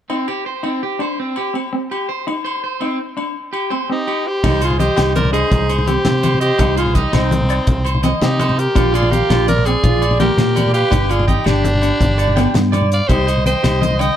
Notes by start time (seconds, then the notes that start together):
0.10 C4 D#4, low agogo
0.28 G4, low agogo
0.46 C5
0.63 C4 D#4, low agogo
0.83 G4
0.99 D4 C5, low agogo
1.20 C4
1.36 G4, low agogo
1.54 C4, low agogo
1.73 C4
1.91 G4, low agogo
2.09 C5
2.27 D#4, muted clean electric guitar stroke, low agogo
2.45 C5, low agogo
2.64 C5
2.80 C4 D#4, low agogo
3.17 D4, low agogo
3.53 G4, low agogo
3.70 C4 C5, low agogo
3.89 C4 D#4 G4
4.07 G4, low agogo
4.26 G4 C5
4.44 C2 D#4, kick, crash, high conga, low conga, low agogo
4.61 F4 G#4 C5, closed hi-hat, low conga, low agogo
4.71 low conga
4.79 G4 C5 D#5, closed hi-hat, high conga
4.96 C2 D#4 G4, snare, closed hi-hat, low conga, low agogo
5.15 A#4 C5 D5, closed hi-hat, high conga, low conga
5.25 low conga
5.32 D4 G#4 C5 D#5, closed hi-hat, low agogo
5.50 C2 D#4, kick, closed hi-hat, high conga, low conga
5.69 C5, closed hi-hat, low conga, low agogo
5.78 low conga
5.87 C4 G4 C5, closed hi-hat, high conga, low agogo
6.05 C3 C4, snare, closed hi-hat, low conga
6.23 C5, closed hi-hat, high conga, low agogo
6.34 low conga
6.40 G4 C5 D#5, closed hi-hat
6.58 C2 D#4, kick, closed hi-hat, high conga, low conga, low agogo
6.76 F4 G#4 C5, closed hi-hat, low conga, low agogo
6.86 low conga
6.95 D#4 G4 D#5, kick, closed hi-hat, high conga
7.13 C2 C4 D#4, snare, closed hi-hat, low conga, low agogo
7.31 closed hi-hat, high conga, low conga
7.41 low conga
7.49 D5, closed hi-hat, low agogo
7.67 C2, kick, closed hi-hat, high conga, low conga
7.85 C5, closed hi-hat, low conga, low agogo
7.94 low conga
8.03 C4 D#5, snare, closed hi-hat, high conga, low agogo
8.21 C3 C4 D#4 G4, snare, closed hi-hat, low conga
8.39 C5, closed hi-hat, high conga, low agogo
8.49 low conga
8.57 G4 A#4, closed hi-hat
8.75 A#1 D4 F4, kick, closed hi-hat, high conga, low conga, low agogo
8.94 F4 G#4 D5, closed hi-hat, low conga, low agogo
9.02 low conga
9.10 G4 A#4 F5, closed hi-hat, high conga
9.29 A#1 D4 F4, snare, closed hi-hat, low conga, low agogo
9.47 A#4 D5, closed hi-hat, high conga, low conga
9.58 low conga
9.65 C4 G#4 D5, closed hi-hat, low agogo
9.83 A#1 F4, kick, closed hi-hat, high conga, low conga
10.02 D5, closed hi-hat, low conga, low agogo
10.11 low conga
10.19 A#3 G4 A#4, snare, closed hi-hat, high conga, low agogo
10.37 A#2 A#3, snare, closed hi-hat, low conga
10.56 D5, closed hi-hat, high conga, low agogo
10.66 low conga
10.74 G4 B4 F5, closed hi-hat
10.91 G1 D4 G4, kick, closed hi-hat, high conga, low conga, low agogo
11.02 low conga
11.09 F4 G#4 D5, closed hi-hat, low conga, low agogo
11.20 low conga
11.27 D#4 G4 G5, kick, closed hi-hat, high conga
11.38 low conga
11.44 G1 D4 G4, snare, closed hi-hat, low conga, low agogo
11.64 closed hi-hat, high conga
11.74 low conga
11.82 D4, closed hi-hat, low agogo
11.92 low conga
12.01 G1, kick, closed hi-hat, high conga, low conga
12.18 D5, closed hi-hat, low conga, low agogo
12.28 low conga
12.36 B3 G5, snare, closed hi-hat, high conga, low agogo
12.45 low conga
12.54 G2 B3, snare, closed hi-hat, low conga
12.72 D5, closed hi-hat, high conga, low conga, low agogo
12.81 low conga
12.92 D5 F5, closed hi-hat
13.08 C2 D#4 G4 C5 D#5, kick, closed hi-hat, high conga, low conga, low agogo
13.27 D#5, closed hi-hat, low conga, low agogo
13.37 low conga
13.46 C5 D#5 G5, closed hi-hat, high conga
13.63 C2 D#4 G4, snare, closed hi-hat, low conga, low agogo
13.81 D#5, closed hi-hat, high conga, low conga
13.91 low conga
13.99 D3 D#5 G5, closed hi-hat, low agogo